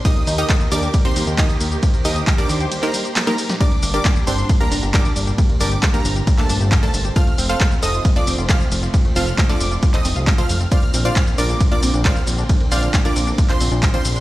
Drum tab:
RD |x---x---x---x---|x---x---x---x---|x---x---x---x---|x---x---x---x---|
HH |xxoxxxoxxxoxxxox|xxoxxxoxxxoxxxox|xxoxxxoxxxoxxxox|xxo-xxoxxxoxxxox|
SH |x-xxxxxxx-xxxxxx|xxxxxxxxxxxxxxxx|x-xxxxxxx-xxxxxx|x-xxxxxxx-xxxxxx|
CP |----x-------x---|----x----x--x---|----x-------x---|----x----x--x---|
SD |----------------|------------oo-o|----------------|----------------|
BD |o---o---o---o---|o---o-----------|o---o---o---o---|o---o---o---o---|

RD |x---x---x---x---|x---x---x---x---|x---x---x---x---|x---x---x---x---|
HH |xxoxxxoxxxoxxxo-|xxo-xxoxxxoxxxox|xxoxxxoxxxo-xxox|xxoxxxoxxxoxxxox|
SH |x-xxxxxxx-xxxxxx|x-xxxxxxx-xxxxxx|x-xxxxxxx-xxxxxx|x-xxxxxxx-xxxxxx|
CP |----x-------x---|----x----x--x---|----x-------x---|----x----x--x---|
SD |----------------|----------------|----------------|----------------|
BD |o---o---o---o---|o---o---o---o---|o---o---o---o---|o---o---o---o---|